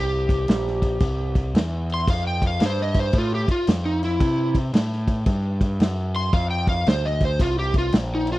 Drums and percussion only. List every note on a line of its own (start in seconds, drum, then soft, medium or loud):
0.29 kick medium
0.29 crash medium
0.48 snare loud
0.48 crash medium
0.67 snare soft
0.82 kick medium
0.82 crash medium
1.00 kick loud
1.00 crash medium
1.35 kick medium
1.35 crash medium
1.55 snare loud
1.55 crash medium
1.90 crash medium
2.08 kick loud
2.08 crash medium
2.42 kick medium
2.42 crash medium
2.60 snare loud
2.60 crash medium
2.79 snare soft
2.94 kick medium
2.94 crash medium
3.13 kick loud
3.13 crash medium
3.48 kick medium
3.48 crash medium
3.67 snare loud
3.67 crash medium
4.03 crash medium
4.20 kick loud
4.20 crash medium
4.55 kick medium
4.55 crash medium
4.74 snare loud
4.74 crash medium
4.92 snare soft
5.07 kick medium
5.07 crash medium
5.26 kick loud
5.26 crash medium
5.61 kick medium
5.61 crash medium
5.80 snare loud
5.80 crash medium
6.15 crash medium
6.33 kick loud
6.33 crash medium
6.67 kick medium
6.67 crash medium
6.87 snare loud
6.87 crash medium
7.06 snare soft
7.20 kick medium
7.20 crash medium
7.39 kick loud
7.39 crash medium
7.74 kick medium
7.74 crash medium
7.92 snare loud
7.92 crash medium
8.27 crash medium